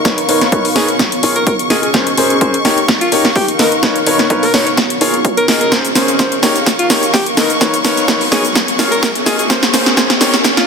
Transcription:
Already playing: D#4 A#4 F5 C#6
0.05 D#4 A#4 B4 C#5, kick, snare, closed hi-hat
0.18 closed hi-hat
0.29 D#4 A#4 B4 C#5, open hi-hat
0.41 snare, closed hi-hat
0.52 D#4 A#4 B4 C#5, kick, closed hi-hat
0.65 open hi-hat
0.76 D#4 G#4 A#4 B4 C#5, snare, open hi-hat
0.88 closed hi-hat
0.99 kick, snare, closed hi-hat
1.12 closed hi-hat
1.23 F4 G#4 A#4 C#5, open hi-hat
1.36 A#4, closed hi-hat
1.47 A#4, kick, closed hi-hat
1.59 closed hi-hat
1.70 F4 G#4 A#4 D#5, snare, open hi-hat
1.83 G#4, closed hi-hat
1.94 C#4 G#4 A#4 C5, kick, snare, closed hi-hat
2.07 closed hi-hat
2.18 C#4 G#4 A#4 C5, open hi-hat
2.26 F5
2.30 closed hi-hat
2.41 C#4 G#4 A#4 C5, kick, closed hi-hat
2.54 closed hi-hat
2.65 D#4 G4 A#4 C#5, snare, open hi-hat
2.78 closed hi-hat
2.88 kick, snare, closed hi-hat
3.01 F4, closed hi-hat
3.12 D#4 G4 A#4 C#5, open hi-hat
3.25 snare, closed hi-hat
3.36 G4, kick, open hi-hat
3.48 closed hi-hat
3.59 D#4 A#4 B4 D#5, snare, open hi-hat
3.72 closed hi-hat
3.83 D#4 A#4 B4 C#5, kick, snare, closed hi-hat
3.96 closed hi-hat
4.07 D#4 A#4 B4 C#5, open hi-hat
4.19 snare, closed hi-hat
4.30 D#4 A#4 B4 C#5, kick, closed hi-hat
4.43 A#4, open hi-hat
4.54 D#4 A#4 B4 C#5, snare, open hi-hat
4.67 C#5, closed hi-hat
4.77 kick, snare, closed hi-hat
4.90 closed hi-hat
5.01 F4 G#4 A#4 C#5, open hi-hat
5.14 closed hi-hat
5.25 kick, closed hi-hat
5.37 A#4, closed hi-hat
5.48 F4 G#4 A#4 D#5, snare, open hi-hat
5.61 A#4, closed hi-hat
5.72 C#4 G#4 A#4 C5 C#6, kick, snare, closed hi-hat, riser, cabasa
5.84 F5, closed hi-hat, cabasa
5.95 C#4 G#4 A#4 C5, snare, open hi-hat, cabasa
6.08 closed hi-hat, cabasa
6.19 C#4 G#4 A#4 C5, kick, snare, closed hi-hat, cabasa
6.32 closed hi-hat
6.43 D#4 G4 A#4 C#5, snare, open hi-hat, cabasa
6.56 closed hi-hat, cabasa
6.66 kick, snare, closed hi-hat, cabasa
6.79 F4, closed hi-hat
6.90 D#4 G4 A#4 C#5, snare, open hi-hat, cabasa
7.03 closed hi-hat, cabasa
7.14 G4, kick, snare, open hi-hat, cabasa
7.26 closed hi-hat
7.37 D#4 A#4 B4 D#5, snare, open hi-hat, cabasa
7.50 closed hi-hat, cabasa
7.61 D#4 A#4 B4 C#5, kick, snare, closed hi-hat, cabasa
7.74 closed hi-hat, cabasa
7.84 D#4 A#4 B4 C#5, snare, open hi-hat, cabasa
7.97 closed hi-hat, cabasa
8.08 D#4 A#4 B4 C#5, kick, snare, closed hi-hat, cabasa
8.21 open hi-hat
8.32 D#4 G#4 A#4 B4 C#5, snare, open hi-hat, cabasa
8.45 closed hi-hat, cabasa
8.55 kick, snare, closed hi-hat, cabasa
8.68 closed hi-hat
8.79 F4 G#4 A#4 C#5, snare, open hi-hat, cabasa
8.92 A#4, closed hi-hat, cabasa
9.03 A#4, kick, snare, closed hi-hat, cabasa
9.15 closed hi-hat
9.26 F4 G#4 A#4 D#5, snare, open hi-hat, cabasa
9.39 G#4, closed hi-hat, cabasa
9.50 C#4 G#4 A#4 C5, kick, snare, closed hi-hat, cabasa
9.63 snare, closed hi-hat, cabasa
9.74 C#4 G#4 A#4 C5, snare, open hi-hat, cabasa
9.83 F5, snare, closed hi-hat
9.87 cabasa
9.97 C#4 G#4 A#4 C5, kick, snare, closed hi-hat, cabasa
10.10 snare, closed hi-hat
10.21 D#4 G4 A#4 C#5, snare, open hi-hat, cabasa
10.34 snare, closed hi-hat, cabasa
10.44 kick, snare, closed hi-hat, cabasa
10.57 F4, snare, closed hi-hat

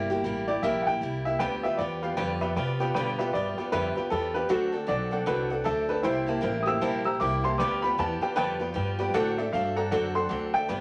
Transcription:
Already playing: G1
0.10 A#3 E4 G4
0.24 A1 G3 A#3 E4 G4
0.48 A#3 E4 G4 D5
0.62 A#1 C3 G3 A#3 E4 G4 E5
0.82 F#5
0.87 A#3 E4 G4 G5
1.01 C2 G3 A#3 E4 G4
1.25 A#3 E4 G4 E5
1.39 D2 G2 D3 F3 B3 F4 G4 B4 D5 G5
1.63 F3 B3 F4 G4 B4 D5 E5 G5
1.77 E2 F3 B3 F4 G4 B4 D5 G5
2.02 F3 B3 F4 G4 B4 D5 F5
2.17 F2 G2 D3 F3 B3 F4 G4 B4 D5 G5
2.41 F3 B3 F4 G4 B4 D5 E5
2.56 C3 F3 B3 F4 G4 B4 D5 G5
2.80 F3 B3 F4 G4 B4 D5 G5
2.94 G2 B2 D3 F3 B3 F4 G4 B4 D5 G5
3.19 F3 B3 F4 G4 B4 D5 E5
3.33 G2 F3 B3 F4 G4 B4 D5 E5
3.58 F3 B3 F4 G4 B4 D5 G5, muted upright bass stroke
3.72 F2 G2 D3 F3 B3 F4 G4 B4 D5 E5
3.96 F3 B3 F4 G4 B4 D5 G5, muted upright bass stroke
4.10 E2 F3 B3 F4 G4 A4 B4 D5 A5
4.34 F3 B3 F4 G4 B4 D5 G5
4.49 D2 D3 F#3 C4 D4 F#4 A4 D5 F#5
4.72 C4 D4 A4 D5 F#5
4.87 B1 F#3 C4 D4 A4 D5 F#5
5.11 C4 D4 A4 D5 F#5
5.26 C2 D3 F#3 C4 D4 A4 B4 D5 F#5
5.50 C4 D4 A4 D5 F#5
5.64 D2 F#3 C4 D4 A4 D5 E5
5.89 C4 D4 A4 B4 D5 A5
6.03 C2 C3 G3 A#3 E4 G4 C5 E5 G5
6.26 A#3 E4 G4 C5 E5 A5
6.41 A1 G3 A#3 E4 G4 C5 E5 G5
6.63 G4 D#6
6.67 A#3 E4 C5 E5 G5 E6
6.81 A#1 C3 G3 A#3 E4 G4 C5 E5 A5
7.04 A#3 E4 G4 C5 E5 A#5 E6
7.20 C2 G3 A#3 E4 G4 C5 E5 G5 D6
7.44 A#3 E4 G4 C5 E5 A5 C6
7.58 D2 G2 D3 F3 B3 F4 G4 B4 D5 G5 D6
7.82 F3 B3 F4 G4 B4 D5 G5 B5
7.98 E2 F3 B3 F4 G4 B4 D5 G5 A5
8.21 F3 B3 F4 G4 B4 D5 G5 A5, muted upright bass stroke
8.36 F2 G2 D3 F3 B3 F4 G4 B4 D5 G5 A5
8.59 F3 B3 F4 G4 B4 D5 G5
8.74 G2 F3 B3 F4 G4 B4 D5 G5
8.99 F3 B3 F4 G4 B4 D5 G5
9.14 A2 D3 F#3 C4 D4 A4 D5 F#5
9.38 C4 D4 A4 D5 E5
9.52 G2 F#3 C4 D4 A4 D5 E5 F5
9.76 C4 D4 A4 D5 F#5 A#5
9.91 F#2 D3 F#3 C4 D4 A4 D5 F#5
10.15 C4 D4 A4 D5 F#5 C6
10.29 D2 F#3 C4 D4 A4 D5 F#5
10.54 C4 D4 A4 D5 E5 G5
10.69 G1 G2 D3 F3 B3 D4 G4 B4 D5 G5

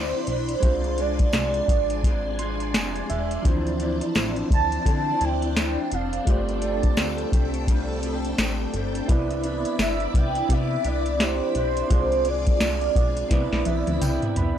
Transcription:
Already playing: D2 C3 E3 C4 D4 E4 C5 D5 B5 C6
0.27 B1 E3 D4 C5, closed hi-hat
0.49 closed hi-hat
0.60 C2 C3 F3 G#3 D4 F4 G#5, kick, closed hi-hat
0.65 C5
0.84 closed hi-hat
0.97 F3 G#3 D4 D5, closed hi-hat
1.19 kick, closed hi-hat
1.33 C2 C3 F3 G#3 D4, snare, closed hi-hat, tambourine
1.54 closed hi-hat
1.68 G#1 F3 G#3 D4, kick, closed hi-hat
1.90 closed hi-hat
2.04 C3 F3 G#3 D4, kick, closed hi-hat
2.39 F3 G#3 D4 C6, closed hi-hat
2.60 closed hi-hat
2.74 F1 C3 F3 G#3 D4 G#5, snare, closed hi-hat, tambourine
2.96 closed hi-hat
3.09 E1 F3 G#3 D4 E5, closed hi-hat
3.31 closed hi-hat
3.42 D2 D3 E3 F3 C4 D4 E4 C5 D5, kick, closed hi-hat
3.47 C5
3.67 closed hi-hat
3.80 F3 C4 E4, closed hi-hat
4.01 closed hi-hat
4.14 A1 D3 F3 C4 E4, snare, closed hi-hat, tambourine
4.36 closed hi-hat
4.50 D2 F3 C4 E4 A5, kick, closed hi-hat
4.72 closed hi-hat
4.85 D3 F3 C4 E4, kick, closed hi-hat
5.21 D2 F3 C4 E4 G5, closed hi-hat
5.42 closed hi-hat
5.56 D3 F3 C4 E4, snare, closed hi-hat, tambourine
5.92 F1 F3 C4 F5, closed hi-hat
6.13 closed hi-hat
6.25 G1 G2 F3 A3 C4 F4 G4 A4 D5 G5, kick, closed hi-hat
6.30 C5
6.49 closed hi-hat
6.62 F3 A3 C4, closed hi-hat
6.83 kick, closed hi-hat
6.97 D2 G2 F3 A3 C4, snare, closed hi-hat, tambourine
7.18 closed hi-hat
7.32 C2 F3 A3 C4, kick, closed hi-hat
7.54 closed hi-hat
7.67 G2 F3 A3 C4, kick, closed hi-hat
8.03 F3 A3 C4, closed hi-hat
8.25 closed hi-hat
8.38 A1 G2 F3 A3 C4, snare, closed hi-hat, tambourine
8.74 G1 F3 A3 C4, closed hi-hat
8.95 closed hi-hat
9.06 C2 C3 E3 B3 C4 E4 B4 D5 B5, kick, closed hi-hat
9.10 D4 D5
9.31 closed hi-hat
9.44 E3 B3 D4, closed hi-hat
9.65 closed hi-hat
9.79 G1 C3 E3 B3 D4 E5, snare, closed hi-hat, tambourine
10.00 closed hi-hat
10.14 C2 E3 B3 D4 G5, kick, closed hi-hat
10.35 closed hi-hat
10.49 C3 E3 B3 D4 E5, kick, closed hi-hat
10.84 C2 E3 B3 D4 D5, closed hi-hat
11.06 closed hi-hat
11.19 C3 E3 C4 D4 E4 G4 D5, snare, closed hi-hat, tambourine
11.23 C5
11.55 B1 E3 D4 C5, closed hi-hat
11.77 closed hi-hat
11.88 C2 C3 F3 G#3 C4 D4 F4 G#4 D5 G#5, kick, closed hi-hat
11.93 D5
12.12 closed hi-hat
12.25 F3 G#3 D4 D5, closed hi-hat
12.47 kick, closed hi-hat
12.61 C2 C3 F3 G#3 D4, snare, closed hi-hat, tambourine
12.81 closed hi-hat
12.96 B1 F3 G#3 D4, kick, closed hi-hat
13.17 closed hi-hat
13.28 C2 C3 E3 C4 E4 B4 B5, kick, snare, closed hi-hat
13.32 B3 D4 D5
13.52 B1, snare
13.65 B1 E3 B3 D4 E5, closed hi-hat, high tom
13.87 D2, closed hi-hat, high tom
14.01 C2 C3 E3 B3 D4 G5, closed hi-hat, mid tom, tambourine
14.22 closed hi-hat, mid tom
14.36 C2 E3 B3 D4 B5, closed hi-hat, floor tom

